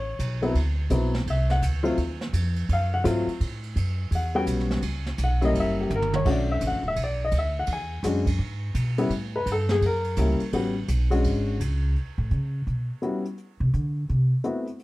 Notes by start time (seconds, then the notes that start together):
Already playing: A1 C#5
0.19 B1, kick, hi-hat pedal, ride
0.42 F#3 B3 C4 E4, ride
0.55 D2, kick, ride
0.90 B1 F#3 B3 C4 E4, kick, hi-hat pedal, ride
1.14 snare
1.26 C2, kick, ride
1.30 E5
1.50 F#5, snare, ride
1.62 D2, kick, hi-hat pedal, ride
1.83 F#3 A3 C4 F4, ride
1.98 D#2, kick, ride
2.21 snare
2.33 F2, kick, hi-hat pedal, ride
2.56 ride
2.69 F#2 F5, kick, ride
2.94 F#5
3.04 G#2 F#3 A3 C4 F4, kick, hi-hat pedal, ride
3.27 muted upright bass stroke, ride
3.40 A2, kick, ride
3.63 ride
3.76 F#2, kick, hi-hat pedal, ride
4.11 E2, kick, ride
4.15 F#5
4.35 G3 B3 C#4 F#4 G5
4.47 B1, kick, hi-hat pedal, ride
4.60 snare
4.71 snare
4.82 C#2, kick, ride
5.06 snare
5.18 B1, kick, hi-hat pedal, ride
5.24 F#5
5.41 G3 A#3 C#4 E4 D#5, ride
5.55 F#1, kick, ride
5.60 E5
5.80 G4
5.90 G1, hi-hat pedal, mid tom
5.95 A#4
6.02 mid tom
6.14 C#5, mid tom
6.25 B1 A3 C#4 D4 F#4, kick, crash
6.31 D5
6.52 E5
6.61 A1, kick, hi-hat pedal, ride
6.67 F#5
6.72 F#1
6.83 D1
6.88 E5
6.96 B1, kick, ride
7.04 D5
7.25 D#5
7.32 D2, kick, hi-hat pedal, ride
7.38 E5
7.59 F#5
7.67 E2, kick, ride
7.73 G#5
8.03 F#2 G#3 C#4 D4 F#4, kick, snare, hi-hat pedal, ride
8.27 kick, ride
8.39 G#2, kick
8.75 B2, kick, hi-hat pedal, ride
8.98 G3 B3 C#4 E4, ride
9.10 A2, kick, ride
9.36 B4
9.46 G2, kick, hi-hat pedal, ride
9.52 A4
9.69 G#4, snare
9.81 F#2, kick, ride
9.86 A#4
10.04 ride
10.17 C#2 G3 A#3 C#4 E4, kick, hi-hat pedal, ride
10.40 muted upright bass stroke, ride
10.52 A1 G3 B3 C#4 F#4, kick, ride
10.88 B1, kick, hi-hat pedal, ride
11.10 G#3 C#4 D4 F#4, ride
11.24 G#1, kick, ride
11.60 C#2, kick, hi-hat pedal, ride
11.96 closed hi-hat
12.18 A2
12.31 C#3, closed hi-hat
12.67 B2, closed hi-hat
13.02 G3 B3 C#4 E4 F#4, closed hi-hat
13.25 closed hi-hat
13.38 closed hi-hat
13.60 C3
13.74 D3, closed hi-hat
14.09 C3, closed hi-hat
14.44 A3 B3 C4 E4 F#4, closed hi-hat
14.67 closed hi-hat
14.79 closed hi-hat